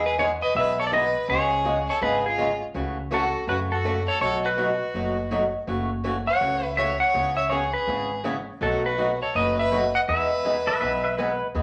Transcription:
Already playing: E2
0.05 G#4 B4
0.19 E3 G#3 B3 D#4 G#4 C#5
0.42 B4 D#5
0.55 B1 E3 G#3 B3 D#4 G#4 B4 E5
0.80 A4 C#5
0.87 A4 D5
0.92 E3 G#3 B3 D#4 G#4 B4 D#5
1.28 C#2 C#3 G#3 B3 F4 G#4 C#5
1.64 C#3 G#3 B3 F4 G#4
1.89 A4 C#5
2.01 G#1 C#3 G#3 B3 F4 G#4 B4
2.26 F4 G#4
2.38 C#3 G#3 B3 F4 G#4
2.74 C#2 C#3 E3 A3 C#4 F#4
3.11 C#3 E3 A3 C#4 F#4 A4
3.47 F#2 C#3 E3 A3 C#4 F#4 B4
3.72 F#4 A4
3.84 C#3 E3 A3 C#4 F#4
4.08 A4 C#5
4.20 B1 B2 F#3 A3 D#4 F#4 A4 C#5
4.44 F#4 B4
4.57 B2 F#3 A3 D#4 F#4
4.94 F#1 B2 F#3 A3 D#4 F#4
5.31 B2 F#3 A3 D#4 F#4
5.67 F#1 C#3 E3 A3 C#4 F#4
6.04 C#3 E3 A3 C#4 F#4
6.27 C#5 F#5
6.40 C#2 C#3 E3 A3 C#4 F#4
6.77 C#3 E3 A3 C#4 F#4 C#5 E5
6.99 C#5 F#5
7.14 C#2 C#3 E3 B3 C#4 G#4
7.36 C#5 E5
7.50 C#3 E3 B3 C#4 G#4 C#5
7.74 G#4 B4
7.87 G#1 C#3 E3 B3 C#4 G#4
8.24 C#3 E3 B3 C#4 G#4
8.61 B1 B2 F#3 A3 D#4 F#4 A4
8.86 F#4 B4
8.98 B2 F#3 A3 D#4 F#4
9.21 A4 C#5
9.35 F#1 B2 F#3 A3 D#4 F#4 B4 D#5
9.58 B4 E5
9.72 B2 F#3 A3 D#4 F#4
9.95 D#5 F#5
10.08 E2 E3 G#3 B3 D#4 G#4 B4 E5
10.44 E3 G#3 B3 D#4 G#4
10.67 B4 E5
10.81 B1 E3 G#3 B3 D#4 G#4 B4 E5
11.04 B4 E5
11.18 E3 G#3 B3 D#4 G#4 B4
11.55 E2 E3 G#3 B3 D#4 G#4

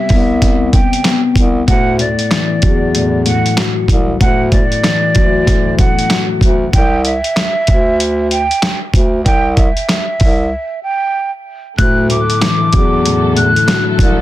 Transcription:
Already playing: C3 G3 B3 E5
0.09 C2 B3, kick, open hi-hat
0.42 C3, kick, snare, closed hi-hat
0.72 C3 G5, kick, closed hi-hat
0.93 closed hi-hat
1.05 B3, snare, clap, closed hi-hat
1.36 C2, kick, closed hi-hat
1.68 D2 A2 F#5, kick, closed hi-hat
1.99 A2 D5, closed hi-hat
2.19 closed hi-hat
2.31 E3, snare, clap, closed hi-hat
2.62 E2 F#3, kick, closed hi-hat
2.95 A2, closed hi-hat
3.25 A2 F#5, closed hi-hat
3.46 closed hi-hat
3.57 F#3, snare, clap, closed hi-hat
3.88 C2, kick, closed hi-hat
4.21 D2 A2 F#5, kick, closed hi-hat
4.52 A2 D5, kick, closed hi-hat
4.72 closed hi-hat
4.84 E3, snare, clap, closed hi-hat
5.15 D2 F#3, kick, closed hi-hat
5.46 A2, kick, snare, closed hi-hat
5.78 A2 F#5, kick, closed hi-hat
5.99 closed hi-hat
6.10 F#3, snare, clap, closed hi-hat
6.41 D2, kick, closed hi-hat
6.73 C2 G5, kick, closed hi-hat
7.05 E5, closed hi-hat
7.24 closed hi-hat
7.37 snare, clap, closed hi-hat
7.67 D2, kick, closed hi-hat
8.00 closed hi-hat
8.31 G5, closed hi-hat
8.51 closed hi-hat
8.63 snare, clap, closed hi-hat
8.94 D2, kick, closed hi-hat
9.26 C2 G5, kick, closed hi-hat
9.57 E5, kick, closed hi-hat
9.77 closed hi-hat
9.89 snare, clap, closed hi-hat
10.20 C2, kick, open hi-hat
10.83 G5
11.78 D2 A2 D3 F#3 A3 E4 A4 F#6, kick, closed hi-hat
12.09 A2 D6, closed hi-hat
12.30 closed hi-hat
12.41 E3, snare, clap, closed hi-hat
12.73 E2 F#3, kick, closed hi-hat
13.06 A2, closed hi-hat
13.36 A2 F#6, closed hi-hat
13.56 closed hi-hat
13.68 F#3, snare, clap, closed hi-hat
13.99 C2, kick, closed hi-hat

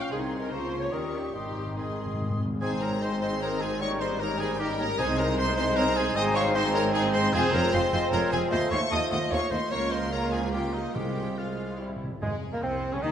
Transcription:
Already playing: C#6
0.00 F5
0.10 C2 C3 D#3 C4 D#4 G#4 G#5 C6
0.40 A#4
0.51 C#2 C#3 F3 A#3 F4 C5 A#5 C#6
0.72 C6
0.81 C#5
0.91 D#2 D#3 G3 C#4 G4 A#4 C#6 D#6
1.13 G4
1.34 G#1 G#2 D#3 C4 D#4 G4 C6 D#6
1.43 G#2
1.50 G#2
1.58 G#2
1.66 G#2
1.74 G#2 D#3 G#4 C6 D#6
1.78 G#2 G#4
1.89 G#2
1.97 G#2
2.06 G#2
2.13 G#2
2.21 G#2
2.30 G#2
2.37 G#2
2.45 G#2
2.53 G#2
2.61 G#1 G#2 G#3 C4 D#4 G#4 C5 G#5
2.72 C4 G#4
2.82 G#3 D#4 A#4 C#5 A#5
2.92 C4 G#4
3.02 G#3 D#4 C5 D#5 C6
3.12 C4 G#4
3.21 G#3 D#4 C5 D#5 C6
3.33 C4 G#4
3.41 G#3 D#4 A#4 C#5 A#5
3.52 C4 G#4
3.61 G#3 D#4 G#4 C5 G#5
3.72 C4 G#4
3.80 G3 A#3 D#4 A#4 C#5 G5 C#6
3.92 G3 C#4
4.01 A#3 D#4 C5 D#5 C6
4.11 G3 C#4
4.20 G3 A#3 D#4 A#4 C#5 A#5
4.30 G3 C#4
4.40 A#3 D#4 G#4 C5 G#5
4.50 G3 C#4
4.59 G3 A#3 D#4 G4 A#4 G5
4.69 G3 C#4
4.79 A#3 D#4 A#4 C#5 A#5
4.89 G3 C#4
4.98 C2 C3 G#3 C4 D#4 G#4 C5 G#5
5.09 G#3 C4
5.18 C4 D#4 A#4 C#5 A#5
5.29 G#3 C4
5.37 G#3 C4 D#4 C5 D#5 C6
5.48 G#3 C4
5.57 C4 D#4 C5 D#5 C6
5.68 G#3 C4
5.76 C4 D#4 A#4 C#5 A#5
5.87 G#3 C4
5.95 C4 D#4 G#4 C5 G#5
6.06 G#3 C4
6.15 G#1 G#2 G#3 C4 D#4 C5 D#5 G#5 D#6
6.26 C4 G#4
6.35 G#3 D#4 C#5 F5 C#6
6.46 C4 G#4
6.54 G#3 D#4 C5 D#5 C6
6.66 C4 G#4
6.74 G#3 D#4 A#4 C#5 A#5
6.86 C4 G#4
6.93 G#3 D#4 G#4 C5 G#5
7.05 C4 G#4
7.13 G#3 D#4 C5 D#5 C6
7.25 C4 G#4
7.33 F1 F2 G#3 C4 F4 G#4 C5 G#5
7.54 F1 F2 C4 F4 A#4 C#5 A#5
7.73 F1 F2 G#3 C4 F4 C5 F5 C6
7.93 F1 F2 C4 F4 C5 D#5 C6
8.12 F1 F2 C4 F4 A#4 C#5 A#5
8.31 F1 F2 C4 F4 G#4 C5 G#5
8.50 D#2 A3 F4 C5 D#5 C6
8.71 D#2 A3 F4 C#5 F5 C#6
8.91 D#2 A3 F4 C5 D#5 A5 D#6
9.11 D#2 A3 F4 D#5 F#5 D#6
9.31 D#2 A3 F4 C#5 F5 C#6
9.50 D#2 A3 F4 C5 D#5 C6
9.70 C#2 A#3 F4 A#4 C#5 F5 C#6
9.91 C5 D#5 C6
10.11 A#3 F4 A#4 C#5 A#5
10.32 G#4 C5 G#5
10.53 A#3 F4 G4 A#4 G5
10.74 D#4 G4 D#5
10.95 C2 C3 G#3 F4 G4 A#4 C5 G5
11.38 G#3 F4 G#4 C5 F5
11.80 C3 G3 E4 C5
11.89 C3
11.96 C3
12.04 C3
12.12 C3
12.22 G#1 F2 G#2 G#3 G#4
12.53 A#2 A#3 A#4
12.62 C2 C3 C4 C5
12.93 C#3 C#4 C#5
13.03 D#2 D#3 D#4 D#5

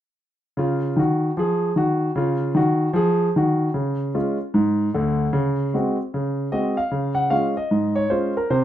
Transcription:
0.57 C#3 F4
0.96 D#3 F#4
1.37 F3 G#4
1.76 D#3 F#4
2.16 C#3 F4
2.55 D#3 F#4
2.93 F3 G#4
3.36 D#3 F#4
3.74 C#3
4.14 G#3 C#4 F4
4.54 G#2
4.94 D2 D3
5.33 C#3
5.74 G#3 C4 F#4
6.14 C#3
6.52 G#3 C4 F#4 D#5
6.77 F5
6.91 C#3
7.15 F#5
7.30 G#3 C#4 F4 F5
7.57 D#5
7.71 G#2
7.96 C#5
8.10 G#3 C#4 F4 C5
8.37 A#4
8.50 C3 C5

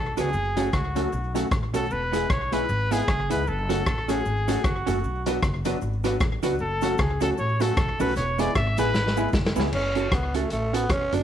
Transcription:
Already playing: B1 A4
0.17 C#2 F#3 B3 D4 F#4 G#4 B4, closed hi-hat, cabasa
0.33 F#1, cabasa
0.56 F#3 A3 C#4 F#4 A4, closed hi-hat, cabasa
0.73 C#2 F#4, kick, cross-stick, cabasa
0.95 F#3 A3 C#4 F#4 A4, closed hi-hat, cabasa
1.12 B1 C#4 F#4, muted hollow-body jazz guitar stroke, cabasa
1.34 F#3 A3 C#4 F#4 A4, closed hi-hat, cabasa
1.51 A1, kick, cross-stick, cabasa
1.74 B1 F#3 A3 C#4 F#4 A4, closed hi-hat, cabasa
1.90 E1 B4, cabasa
2.12 G#3 B3 E4 G#4, closed hi-hat, cabasa
2.30 B1 C#5, kick, cross-stick, cabasa
2.52 G#3 B3 E4 G#4 B4, closed hi-hat, cabasa
2.69 G#1 E4 G#4, muted hollow-body jazz guitar stroke, cabasa
2.91 G#3 B3 E4 G#4, closed hi-hat, cabasa
3.08 F#1, kick, cross-stick, cabasa
3.30 C#2 G#3 B3 E4 G#4 B4, closed hi-hat, cabasa
3.47 F#1 A4, cabasa
3.69 F#3 A3 C#4 F#4 A4, closed hi-hat, cabasa
3.86 A1, kick, cross-stick, cabasa
4.08 F#3 A3 C#4 F#4 G#4 A4, closed hi-hat, cabasa
4.25 G#1 C#4 F#4, muted hollow-body jazz guitar stroke, cabasa
4.48 F#3 A3 C#4 F#4 A4, closed hi-hat, cabasa
4.64 F#1 F#4, kick, cross-stick, cabasa
4.86 F#1 F#3 A3 C#4 F#4 A4, closed hi-hat, cabasa
5.04 B1, cabasa
5.26 F#3 B3 D4 F#4 B4, closed hi-hat, cabasa
5.42 F#1, kick, cross-stick, cabasa
5.65 F#3 B3 D4 F#4 B4, closed hi-hat, cabasa
5.81 G#1 D4 F#4, muted hollow-body jazz guitar stroke, cabasa
6.04 F#3 B3 D4 F#4 B4, closed hi-hat, cabasa
6.20 A1, kick, cross-stick, cabasa
6.43 C#2 F#3 B3 D4 F#4 B4, closed hi-hat, cabasa
6.59 F#1 A4, cabasa
6.81 F#3 A3 C#4 F#4 A4, closed hi-hat, cabasa
6.98 C#2 G#4, kick, cross-stick, cabasa
7.21 F#3 A3 C#4 F#4 A4, closed hi-hat, cabasa
7.38 A1 C#5, cabasa
7.60 F#3 A3 C#4 F#4 A4, closed hi-hat, cabasa
7.77 B1, kick, cross-stick, cabasa
7.99 B1 F#3 A3 C#4 F#4 A4 B4, open hi-hat, cabasa
8.16 E1 C#5, hi-hat pedal, cabasa
8.38 G#3 B3 E4 G#4 D5, closed hi-hat, cabasa
8.55 G#1 E5, kick, cross-stick, cabasa
8.78 A1 G#3 B3 E4 G#4 B4, closed hi-hat, cabasa
8.94 G#1 E4 G#4, snare, cabasa
9.07 snare
9.17 G#3 B3 E4 G#4, cabasa
9.33 F#1, kick, snare, cabasa
9.46 snare
9.56 C#2 G#3 B3 E4 G#4, snare, cabasa
9.72 F#1 C#4, crash
9.95 C#4 F#4 A4, closed hi-hat
10.12 C#2 B3, kick, cross-stick, closed hi-hat
10.34 A3 C#4 F#4 A4, closed hi-hat
10.50 A1 A3, closed hi-hat
10.73 B3 C#4 F#4 A4, closed hi-hat
10.90 E1 C#4, kick, cross-stick, closed hi-hat
11.12 F#1 C#4 D4 F#4 A4, closed hi-hat

